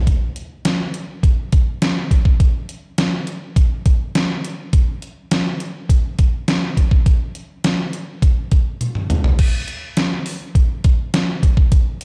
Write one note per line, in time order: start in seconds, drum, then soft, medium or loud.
0.07 kick loud
0.07 closed hi-hat medium
0.36 closed hi-hat medium
0.65 snare loud
0.65 closed hi-hat loud
0.94 closed hi-hat medium
1.23 kick loud
1.23 closed hi-hat medium
1.52 kick loud
1.52 closed hi-hat medium
1.82 snare loud
1.82 closed hi-hat medium
2.11 kick medium
2.11 closed hi-hat medium
2.25 kick loud
2.40 kick loud
2.40 closed hi-hat medium
2.69 closed hi-hat medium
2.98 snare loud
2.98 closed hi-hat loud
3.27 closed hi-hat medium
3.56 kick loud
3.56 closed hi-hat medium
3.86 kick medium
3.86 closed hi-hat medium
4.15 snare loud
4.15 closed hi-hat medium
4.45 closed hi-hat medium
4.73 kick loud
4.73 closed hi-hat medium
5.02 closed hi-hat medium
5.31 snare loud
5.31 closed hi-hat loud
5.60 closed hi-hat medium
5.89 kick loud
5.89 closed hi-hat medium
6.19 kick medium
6.19 closed hi-hat medium
6.48 snare loud
6.48 closed hi-hat medium
6.77 kick medium
6.77 closed hi-hat medium
6.91 kick loud
7.06 kick loud
7.06 closed hi-hat medium
7.35 closed hi-hat medium
7.64 snare loud
7.64 closed hi-hat loud
7.93 closed hi-hat medium
8.22 kick loud
8.22 closed hi-hat medium
8.51 kick medium
8.51 closed hi-hat medium
8.81 closed hi-hat medium
8.81 high tom medium
8.95 mid tom medium
9.10 closed hi-hat medium
9.10 mid tom medium
9.24 floor tom medium
9.39 kick loud
9.39 closed hi-hat medium
9.39 crash loud
9.68 closed hi-hat medium
9.97 snare loud
9.97 closed hi-hat loud
10.26 open hi-hat medium
10.55 kick loud
10.55 closed hi-hat medium
10.84 kick loud
10.84 closed hi-hat medium
11.14 snare loud
11.14 closed hi-hat loud
11.43 kick medium
11.43 closed hi-hat medium
11.57 kick loud
11.72 kick loud
11.72 closed hi-hat medium
12.01 closed hi-hat medium